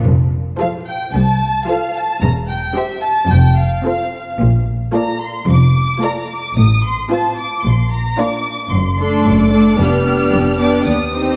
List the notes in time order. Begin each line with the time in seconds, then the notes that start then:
0.05 F1 F2
0.59 F3 F4 A4 C5 F5
0.87 G5
1.15 C2 A5
1.67 F3 F4 A4 C5 F5
1.95 A5
2.22 E1 E2 A#5
2.49 G5
2.76 C4 G4 C5 E5
3.02 A5
3.30 F1 F2 G5
3.58 F5
3.85 C4 F4 A4 C5 F5
4.40 A#1 A#2
4.94 A#3 F4 A4 D5 A#5
5.22 C6
5.49 F1 F2 D6
6.02 A#3 F4 A4 D5 A#5
6.29 D6
6.57 A1 A2 D#6
6.84 C6
7.10 C4 F4 C5 A5
7.38 D6
7.65 A#1 A#2 C6
7.92 A#5
8.19 A#3 D4 F4 D5 D6
8.72 F#1 F#2 C6
8.98 A3 D4 A4 D5
9.25 F#1 F#2 D6
9.32 C6
9.39 D6
9.52 A3 D4 A4 D5
9.78 F1 F2 B3 D4 G4 D5 F6
10.06 B3 D4 G4 D5
10.33 F1 F2
10.59 B3 D4 G4 D5 D6
10.86 D#2 D#6
11.13 C4 D#4 G4 C5